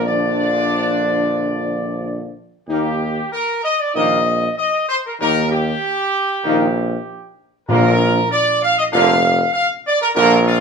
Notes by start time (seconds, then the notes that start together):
Already playing: A#1
0.06 D3 F3 D4 D5
2.68 D#2 D#3 A#3 D#4 G4
3.32 A#4
3.64 D#5
3.80 D5
3.94 A#1 D#3 A#3 D#4 D#5
4.58 D#5
4.89 C5
5.06 A#4
5.19 D#2 D#3 A#3 D#4 A#4
5.51 G4
6.44 A#1 D#3 A#3 D#4
7.68 A#1 A#2 D3 A#3 F4 A#4
8.32 D5
8.62 F5
8.78 D#5
8.92 F1 D3 A#3 F4 F5
9.53 F5
9.86 D5
10.02 A#4
10.15 A#1 D3 A#3 F4 A#4
10.47 F4